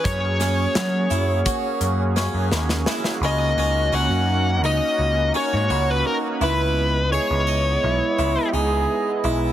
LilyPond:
<<
  \new Staff \with { instrumentName = "Lead electric guitar" } { \time 9/8 \key dis \phrygian \tempo 4. = 57 cis''2.~ cis''8 r4 | dis''4 fis''4 dis''4 cis''8. b'16 ais'8 | b'4 cis''2 r4. | }
  \new Staff \with { instrumentName = "Trombone" } { \time 9/8 \key dis \phrygian r1 r8 | r1 r8 | r2 e'4 gis'4~ gis'16 r16 | }
  \new Staff \with { instrumentName = "Harpsichord" } { \time 9/8 \key dis \phrygian cis'8 cis'4 e'8 fis'4 cis'4 e'8 | cis'8 cis'8 cis'4 dis'4 cis'8 fis'4 | e'4 gis'8 dis''4 e'8 dis'4 e'8 | }
  \new Staff \with { instrumentName = "Analog synth pad" } { \time 9/8 \key dis \phrygian <ais cis' fis' gis'>1~ <ais cis' fis' gis'>8 | <ais cis' dis' fis'>1~ <ais cis' dis' fis'>8 | <gis b e' dis''>1~ <gis b e' dis''>8 | }
  \new Staff \with { instrumentName = "Picked electric bass" } { \clef bass \time 9/8 \key dis \phrygian fis,4 fis8 fis,8 r8 fis,8. fis,16 dis,8 r8 | cis,8 cis,8 cis,16 fis,8. cis,16 r16 cis,8 r16 gis,16 cis,8 r8 | cis,4~ cis,16 cis,8. b,,16 r16 cis,16 r16 cis,8 r8 b,,8 | }
  \new DrumStaff \with { instrumentName = "Drums" } \drummode { \time 9/8 <hh bd>8 <hh sn>8 <hh sn>8 hh8 <hh bd>8 hh8 sn8 sn16 sn16 sn16 sn16 | r4 r4 r4 r4. | r4 r4 r4 r4. | }
>>